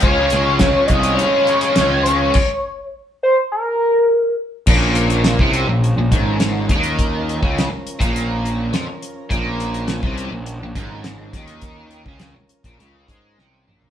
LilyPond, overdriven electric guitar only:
\new Staff \with { instrumentName = "Overdriven electric guitar" } { \clef bass \time 4/4 \key bes \minor \tempo 4 = 104 <des f aes des' f' des''>4. <des f aes des' f' des''>4. <des f aes des' f' des''>4 | r1 | bes,4~ bes,16 c8 bes,8 bes,16 aes,4 ees8~ | ees8. des8 r8 bes,4~ bes,16 f16 r8. |
bes,4~ bes,16 c8 bes,8 bes,16 aes,4 ees8~ | ees8. des8 r8 bes,16 des8 aes8 c8 bes,8 | }